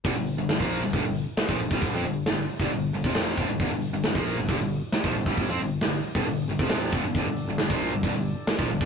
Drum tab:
HH |o-o-o-o-o-o-o-o-|o-o-o-o-o-o-o-o-|o-o-o-o-o-o-o-o-|o-o-o-o-o-o-o-o-|
SD |----o--o----o---|----o--o----o---|----o--o----o---|----o-------o---|
BD |o----o--o----o-o|o------o---o--o-|o----o--o----o-o|o------o---o--o-|

HH |o-o-o-o-o-o-o-o-|
SD |----o-------o---|
BD |o----o--o----o-o|